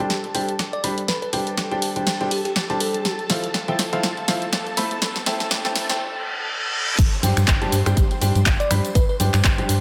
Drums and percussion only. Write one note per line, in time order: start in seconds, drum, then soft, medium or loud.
0.10 snare medium
0.10 closed hi-hat medium
0.24 closed hi-hat soft
0.35 closed hi-hat medium
0.35 open hi-hat loud
0.49 closed hi-hat medium
0.59 snare loud
0.59 snare medium
0.59 closed hi-hat medium
0.73 closed hi-hat soft
0.84 snare soft
0.84 closed hi-hat medium
0.84 open hi-hat loud
0.98 closed hi-hat medium
1.08 snare medium
1.08 closed hi-hat medium
1.22 closed hi-hat soft
1.33 snare soft
1.33 closed hi-hat medium
1.33 open hi-hat loud
1.47 closed hi-hat soft
1.47 closed hi-hat medium
1.57 snare loud
1.57 snare medium
1.57 closed hi-hat medium
1.71 closed hi-hat soft
1.82 closed hi-hat medium
1.82 open hi-hat loud
1.96 closed hi-hat medium
2.07 snare medium
2.07 closed hi-hat medium
2.21 closed hi-hat soft
2.31 closed hi-hat medium
2.31 open hi-hat loud
2.45 snare soft
2.45 closed hi-hat medium
2.56 snare loud
2.56 snare medium
2.56 closed hi-hat medium
2.70 closed hi-hat soft
2.80 closed hi-hat medium
2.80 open hi-hat loud
2.94 closed hi-hat medium
3.05 snare medium
3.05 closed hi-hat medium
3.19 closed hi-hat soft
3.30 snare soft
3.30 snare medium
3.30 closed hi-hat medium
3.30 open hi-hat loud
3.44 closed hi-hat medium
3.54 snare loud
3.54 snare medium
3.54 closed hi-hat medium
3.68 closed hi-hat soft
3.79 snare soft
3.79 snare medium
3.79 closed hi-hat medium
3.79 open hi-hat loud
3.93 closed hi-hat medium
4.03 snare medium
4.03 closed hi-hat medium
4.17 closed hi-hat soft
4.28 snare medium
4.28 closed hi-hat medium
4.28 open hi-hat loud
4.42 closed hi-hat soft
4.53 snare loud
4.53 snare medium
4.53 closed hi-hat medium
4.67 closed hi-hat soft
4.77 snare medium
4.77 snare soft
4.77 closed hi-hat medium
4.77 open hi-hat loud
4.91 closed hi-hat medium
5.02 snare medium
5.02 closed hi-hat medium
5.16 snare medium
5.16 closed hi-hat soft
5.26 snare medium
5.26 snare soft
5.26 closed hi-hat medium
5.26 open hi-hat loud
5.40 snare medium
5.40 closed hi-hat soft
5.51 snare loud
5.51 closed hi-hat medium
5.65 snare medium
5.65 closed hi-hat soft
5.76 snare loud
5.76 closed hi-hat medium
5.76 open hi-hat loud
5.89 snare medium
5.89 closed hi-hat medium
6.98 kick loud
6.98 closed hi-hat medium
6.98 crash loud
6.98 tambourine medium
6.98 shaker soft
7.13 tambourine soft
7.23 snare soft
7.23 closed hi-hat medium
7.23 open hi-hat loud
7.23 high conga loud
7.23 shaker medium
7.37 finger snap medium
7.37 closed hi-hat medium
7.37 tambourine medium
7.37 shaker soft
7.47 kick loud
7.47 snare loud
7.47 clap loud
7.47 closed hi-hat medium
7.47 tambourine medium
7.47 shaker soft
7.61 closed hi-hat soft
7.61 tambourine soft
7.61 high conga medium
7.72 snare soft
7.72 closed hi-hat medium
7.72 open hi-hat loud
7.72 shaker medium
7.86 finger snap medium
7.86 closed hi-hat medium
7.86 tambourine medium
7.86 shaker soft
7.97 kick loud
7.97 closed hi-hat medium
7.97 tambourine medium
7.97 high conga medium
7.97 shaker soft
8.11 closed hi-hat soft
8.11 tambourine soft
8.21 closed hi-hat medium
8.21 open hi-hat loud
8.21 shaker medium
8.35 closed hi-hat medium
8.35 tambourine medium
8.35 high conga medium
8.35 shaker soft
8.46 kick loud
8.46 snare loud
8.46 clap loud
8.46 closed hi-hat medium
8.46 tambourine medium
8.46 shaker soft
8.60 closed hi-hat soft
8.60 tambourine soft
8.60 shaker soft
8.70 finger snap medium
8.70 snare soft
8.70 closed hi-hat medium
8.70 open hi-hat loud
8.70 high conga loud
8.70 shaker medium
8.84 closed hi-hat medium
8.84 tambourine medium
8.84 shaker soft
8.95 kick loud
8.95 closed hi-hat medium
8.95 tambourine medium
8.95 shaker soft
9.09 tambourine soft
9.20 snare soft
9.20 closed hi-hat medium
9.20 open hi-hat loud
9.20 high conga loud
9.20 shaker medium
9.34 finger snap medium
9.34 clap soft
9.34 closed hi-hat soft
9.34 closed hi-hat medium
9.34 tambourine medium
9.34 shaker soft
9.44 kick loud
9.44 snare loud
9.44 clap loud
9.44 closed hi-hat medium
9.44 shaker soft
9.58 closed hi-hat soft
9.58 tambourine soft
9.58 high conga medium
9.69 closed hi-hat medium
9.69 open hi-hat loud
9.69 shaker medium